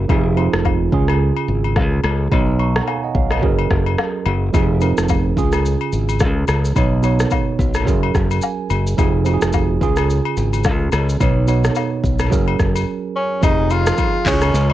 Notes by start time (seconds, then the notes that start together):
Already playing: F#3 C#4 G#4 A#4
0.08 F1 F3 C4 D#4 G#4, kick, high agogo
0.36 F3 C4 D#4 F4, high agogo
0.53 F1, cross-stick
0.65 kick, high agogo, low woodblock
0.91 C#2 C#3 C#4 F4 G#4, kick
1.08 cross-stick, high agogo
1.37 high agogo
1.48 G#1
1.64 high agogo
1.76 C#2, kick, cross-stick, low woodblock
2.04 C#2, cross-stick, high agogo
2.30 B1 B2 B3 D#4 C#5, kick, high agogo
2.59 A#5 C#6, high agogo
2.76 F#5 A#5, cross-stick
2.87 F5 G#5, high agogo, low woodblock
3.04 D#5 F#5
3.15 B1 C#5 F5, kick
3.31 B4 D#5, cross-stick, high agogo
3.42 F#1 F#3 C#4 G#4 A#4, kick
3.59 high agogo
3.70 F#1, kick, cross-stick
3.86 high agogo
3.98 cross-stick, low woodblock
4.26 F#1, high agogo
4.53 F1 F3 C4 D#4 G#4, kick, high agogo, shaker
4.81 F3 C4 D#4 A#4, high agogo, shaker
4.98 F1, cross-stick, shaker
5.09 kick, high agogo, low woodblock, shaker
5.36 C#2 C#3 C#4 F4 G#4, kick, shaker
5.52 cross-stick, high agogo, shaker
5.66 shaker
5.81 high agogo
5.93 G#1, shaker
6.09 high agogo, shaker
6.20 C#2, kick, cross-stick, low woodblock, shaker
6.48 C#2, cross-stick, high agogo, shaker
6.65 shaker
6.75 B1 B2 B3 D#4 C#5, kick, high agogo, shaker
7.02 B2 B3 D#4 C#5, high agogo, shaker
7.20 cross-stick, shaker
7.31 kick, high agogo, low woodblock, shaker
7.59 B1, kick, shaker
7.74 cross-stick, high agogo, shaker
7.86 F#1 F#3 C#4 G#4 A#4, kick, shaker
8.03 high agogo
8.15 F#1, kick, cross-stick, shaker
8.31 high agogo, shaker
8.42 G#5, low woodblock, shaker
8.70 F#1, high agogo, shaker
8.87 shaker
8.97 F1 F3 C4 D#4 G#4, kick, high agogo, shaker
9.25 F3 C4 D#4 F#4, high agogo, shaker
9.34 G#4
9.42 F1, cross-stick, shaker
9.53 kick, high agogo, low woodblock, shaker
9.80 C#2 C#3 C#4 F4 G#4, kick, shaker
9.97 cross-stick, high agogo, shaker
10.10 shaker
10.25 high agogo
10.37 G#1, shaker
10.53 high agogo, shaker
10.64 C#2, kick, cross-stick, low woodblock, shaker
10.92 C#2, cross-stick, high agogo, shaker
11.09 shaker
11.19 B1 B2 B3 D#4 C#5, kick, high agogo, shaker
11.47 B2 B3 D#4 C#5, high agogo, shaker
11.64 cross-stick, shaker
11.75 high agogo, low woodblock, shaker
12.04 B1, kick, shaker
12.19 cross-stick, high agogo, shaker
12.30 F#1 F#3 C#4 G#4 A#4, kick, shaker
12.48 high agogo
12.59 F#1, kick, cross-stick, shaker
12.76 high agogo, shaker
13.16 C#4
13.41 F1 F3 C4 D#4 G#4, kick, high agogo, shaker
13.70 F4, high agogo, shaker
13.87 cross-stick, shaker
13.97 kick, high agogo, shaker
14.25 C#2 C#3 G#3 C#4 E4 F4 G#4, kick, clap, open hi-hat, shaker
14.33 F4
14.41 cross-stick, high agogo, shaker
14.54 C#2, shaker
14.70 high agogo